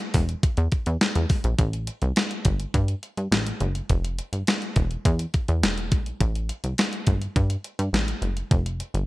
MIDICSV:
0, 0, Header, 1, 3, 480
1, 0, Start_track
1, 0, Tempo, 576923
1, 1322, Time_signature, 4, 2, 24, 8
1, 7543, End_track
2, 0, Start_track
2, 0, Title_t, "Analog synth bass"
2, 0, Program_c, 0, 38
2, 119, Note_on_c, 0, 28, 127
2, 292, Note_off_c, 0, 28, 0
2, 480, Note_on_c, 0, 40, 101
2, 567, Note_off_c, 0, 40, 0
2, 722, Note_on_c, 0, 40, 90
2, 808, Note_off_c, 0, 40, 0
2, 962, Note_on_c, 0, 40, 98
2, 1048, Note_off_c, 0, 40, 0
2, 1200, Note_on_c, 0, 34, 98
2, 1287, Note_off_c, 0, 34, 0
2, 1319, Note_on_c, 0, 33, 121
2, 1578, Note_off_c, 0, 33, 0
2, 1680, Note_on_c, 0, 36, 95
2, 1767, Note_off_c, 0, 36, 0
2, 2040, Note_on_c, 0, 31, 104
2, 2213, Note_off_c, 0, 31, 0
2, 2282, Note_on_c, 0, 43, 110
2, 2454, Note_off_c, 0, 43, 0
2, 2642, Note_on_c, 0, 43, 81
2, 2728, Note_off_c, 0, 43, 0
2, 2759, Note_on_c, 0, 33, 98
2, 2932, Note_off_c, 0, 33, 0
2, 3001, Note_on_c, 0, 30, 87
2, 3174, Note_off_c, 0, 30, 0
2, 3241, Note_on_c, 0, 29, 113
2, 3500, Note_off_c, 0, 29, 0
2, 3600, Note_on_c, 0, 31, 87
2, 3687, Note_off_c, 0, 31, 0
2, 3962, Note_on_c, 0, 28, 111
2, 4134, Note_off_c, 0, 28, 0
2, 4204, Note_on_c, 0, 40, 124
2, 4376, Note_off_c, 0, 40, 0
2, 4565, Note_on_c, 0, 40, 94
2, 4683, Note_on_c, 0, 28, 104
2, 4696, Note_off_c, 0, 40, 0
2, 4924, Note_on_c, 0, 34, 89
2, 4936, Note_off_c, 0, 28, 0
2, 5096, Note_off_c, 0, 34, 0
2, 5163, Note_on_c, 0, 33, 121
2, 5421, Note_off_c, 0, 33, 0
2, 5523, Note_on_c, 0, 36, 83
2, 5609, Note_off_c, 0, 36, 0
2, 5882, Note_on_c, 0, 31, 113
2, 6054, Note_off_c, 0, 31, 0
2, 6124, Note_on_c, 0, 43, 107
2, 6296, Note_off_c, 0, 43, 0
2, 6481, Note_on_c, 0, 43, 89
2, 6568, Note_off_c, 0, 43, 0
2, 6599, Note_on_c, 0, 33, 102
2, 6772, Note_off_c, 0, 33, 0
2, 6838, Note_on_c, 0, 30, 90
2, 7012, Note_off_c, 0, 30, 0
2, 7080, Note_on_c, 0, 29, 113
2, 7340, Note_off_c, 0, 29, 0
2, 7439, Note_on_c, 0, 31, 95
2, 7527, Note_off_c, 0, 31, 0
2, 7543, End_track
3, 0, Start_track
3, 0, Title_t, "Drums"
3, 0, Note_on_c, 9, 42, 50
3, 83, Note_off_c, 9, 42, 0
3, 115, Note_on_c, 9, 46, 101
3, 120, Note_on_c, 9, 36, 115
3, 198, Note_off_c, 9, 46, 0
3, 203, Note_off_c, 9, 36, 0
3, 240, Note_on_c, 9, 42, 45
3, 323, Note_off_c, 9, 42, 0
3, 360, Note_on_c, 9, 36, 117
3, 361, Note_on_c, 9, 42, 81
3, 443, Note_off_c, 9, 36, 0
3, 444, Note_off_c, 9, 42, 0
3, 475, Note_on_c, 9, 42, 64
3, 559, Note_off_c, 9, 42, 0
3, 596, Note_on_c, 9, 42, 50
3, 601, Note_on_c, 9, 36, 80
3, 679, Note_off_c, 9, 42, 0
3, 684, Note_off_c, 9, 36, 0
3, 717, Note_on_c, 9, 42, 64
3, 800, Note_off_c, 9, 42, 0
3, 842, Note_on_c, 9, 38, 127
3, 842, Note_on_c, 9, 42, 88
3, 925, Note_off_c, 9, 42, 0
3, 926, Note_off_c, 9, 38, 0
3, 960, Note_on_c, 9, 42, 57
3, 1044, Note_off_c, 9, 42, 0
3, 1077, Note_on_c, 9, 46, 70
3, 1080, Note_on_c, 9, 36, 104
3, 1161, Note_off_c, 9, 46, 0
3, 1164, Note_off_c, 9, 36, 0
3, 1198, Note_on_c, 9, 42, 53
3, 1282, Note_off_c, 9, 42, 0
3, 1319, Note_on_c, 9, 36, 98
3, 1319, Note_on_c, 9, 42, 71
3, 1402, Note_off_c, 9, 42, 0
3, 1403, Note_off_c, 9, 36, 0
3, 1442, Note_on_c, 9, 42, 57
3, 1525, Note_off_c, 9, 42, 0
3, 1558, Note_on_c, 9, 42, 73
3, 1641, Note_off_c, 9, 42, 0
3, 1677, Note_on_c, 9, 42, 60
3, 1761, Note_off_c, 9, 42, 0
3, 1798, Note_on_c, 9, 42, 83
3, 1806, Note_on_c, 9, 38, 119
3, 1881, Note_off_c, 9, 42, 0
3, 1889, Note_off_c, 9, 38, 0
3, 1921, Note_on_c, 9, 42, 53
3, 2004, Note_off_c, 9, 42, 0
3, 2036, Note_on_c, 9, 42, 92
3, 2040, Note_on_c, 9, 36, 106
3, 2120, Note_off_c, 9, 42, 0
3, 2124, Note_off_c, 9, 36, 0
3, 2160, Note_on_c, 9, 42, 51
3, 2243, Note_off_c, 9, 42, 0
3, 2281, Note_on_c, 9, 36, 102
3, 2283, Note_on_c, 9, 42, 74
3, 2364, Note_off_c, 9, 36, 0
3, 2366, Note_off_c, 9, 42, 0
3, 2398, Note_on_c, 9, 42, 62
3, 2481, Note_off_c, 9, 42, 0
3, 2520, Note_on_c, 9, 42, 51
3, 2603, Note_off_c, 9, 42, 0
3, 2641, Note_on_c, 9, 42, 60
3, 2724, Note_off_c, 9, 42, 0
3, 2764, Note_on_c, 9, 42, 86
3, 2765, Note_on_c, 9, 38, 109
3, 2847, Note_off_c, 9, 42, 0
3, 2848, Note_off_c, 9, 38, 0
3, 2883, Note_on_c, 9, 42, 64
3, 2966, Note_off_c, 9, 42, 0
3, 2999, Note_on_c, 9, 42, 71
3, 3082, Note_off_c, 9, 42, 0
3, 3121, Note_on_c, 9, 42, 46
3, 3204, Note_off_c, 9, 42, 0
3, 3240, Note_on_c, 9, 42, 80
3, 3241, Note_on_c, 9, 36, 93
3, 3324, Note_off_c, 9, 36, 0
3, 3324, Note_off_c, 9, 42, 0
3, 3366, Note_on_c, 9, 42, 56
3, 3449, Note_off_c, 9, 42, 0
3, 3482, Note_on_c, 9, 42, 73
3, 3565, Note_off_c, 9, 42, 0
3, 3601, Note_on_c, 9, 42, 63
3, 3684, Note_off_c, 9, 42, 0
3, 3722, Note_on_c, 9, 42, 77
3, 3729, Note_on_c, 9, 38, 112
3, 3805, Note_off_c, 9, 42, 0
3, 3813, Note_off_c, 9, 38, 0
3, 3843, Note_on_c, 9, 42, 49
3, 3926, Note_off_c, 9, 42, 0
3, 3959, Note_on_c, 9, 42, 85
3, 3962, Note_on_c, 9, 36, 105
3, 4043, Note_off_c, 9, 42, 0
3, 4046, Note_off_c, 9, 36, 0
3, 4083, Note_on_c, 9, 42, 50
3, 4166, Note_off_c, 9, 42, 0
3, 4204, Note_on_c, 9, 36, 119
3, 4206, Note_on_c, 9, 42, 81
3, 4287, Note_off_c, 9, 36, 0
3, 4289, Note_off_c, 9, 42, 0
3, 4320, Note_on_c, 9, 42, 63
3, 4404, Note_off_c, 9, 42, 0
3, 4441, Note_on_c, 9, 42, 56
3, 4445, Note_on_c, 9, 36, 89
3, 4524, Note_off_c, 9, 42, 0
3, 4528, Note_off_c, 9, 36, 0
3, 4562, Note_on_c, 9, 42, 62
3, 4645, Note_off_c, 9, 42, 0
3, 4687, Note_on_c, 9, 42, 88
3, 4688, Note_on_c, 9, 38, 118
3, 4771, Note_off_c, 9, 38, 0
3, 4771, Note_off_c, 9, 42, 0
3, 4806, Note_on_c, 9, 42, 55
3, 4889, Note_off_c, 9, 42, 0
3, 4922, Note_on_c, 9, 42, 66
3, 4924, Note_on_c, 9, 36, 103
3, 5006, Note_off_c, 9, 42, 0
3, 5008, Note_off_c, 9, 36, 0
3, 5044, Note_on_c, 9, 42, 47
3, 5127, Note_off_c, 9, 42, 0
3, 5163, Note_on_c, 9, 36, 88
3, 5163, Note_on_c, 9, 42, 82
3, 5246, Note_off_c, 9, 36, 0
3, 5246, Note_off_c, 9, 42, 0
3, 5287, Note_on_c, 9, 42, 54
3, 5370, Note_off_c, 9, 42, 0
3, 5402, Note_on_c, 9, 42, 67
3, 5485, Note_off_c, 9, 42, 0
3, 5522, Note_on_c, 9, 42, 65
3, 5606, Note_off_c, 9, 42, 0
3, 5642, Note_on_c, 9, 42, 89
3, 5650, Note_on_c, 9, 38, 123
3, 5726, Note_off_c, 9, 42, 0
3, 5733, Note_off_c, 9, 38, 0
3, 5763, Note_on_c, 9, 42, 54
3, 5846, Note_off_c, 9, 42, 0
3, 5879, Note_on_c, 9, 42, 91
3, 5882, Note_on_c, 9, 36, 116
3, 5962, Note_off_c, 9, 42, 0
3, 5966, Note_off_c, 9, 36, 0
3, 6003, Note_on_c, 9, 42, 45
3, 6086, Note_off_c, 9, 42, 0
3, 6123, Note_on_c, 9, 36, 122
3, 6126, Note_on_c, 9, 42, 83
3, 6206, Note_off_c, 9, 36, 0
3, 6209, Note_off_c, 9, 42, 0
3, 6240, Note_on_c, 9, 42, 63
3, 6323, Note_off_c, 9, 42, 0
3, 6360, Note_on_c, 9, 42, 60
3, 6443, Note_off_c, 9, 42, 0
3, 6482, Note_on_c, 9, 42, 69
3, 6565, Note_off_c, 9, 42, 0
3, 6607, Note_on_c, 9, 38, 111
3, 6607, Note_on_c, 9, 42, 92
3, 6690, Note_off_c, 9, 42, 0
3, 6691, Note_off_c, 9, 38, 0
3, 6723, Note_on_c, 9, 42, 55
3, 6806, Note_off_c, 9, 42, 0
3, 6840, Note_on_c, 9, 42, 68
3, 6923, Note_off_c, 9, 42, 0
3, 6962, Note_on_c, 9, 42, 50
3, 7045, Note_off_c, 9, 42, 0
3, 7081, Note_on_c, 9, 36, 108
3, 7081, Note_on_c, 9, 42, 83
3, 7164, Note_off_c, 9, 42, 0
3, 7165, Note_off_c, 9, 36, 0
3, 7206, Note_on_c, 9, 42, 57
3, 7289, Note_off_c, 9, 42, 0
3, 7322, Note_on_c, 9, 42, 66
3, 7405, Note_off_c, 9, 42, 0
3, 7442, Note_on_c, 9, 42, 63
3, 7525, Note_off_c, 9, 42, 0
3, 7543, End_track
0, 0, End_of_file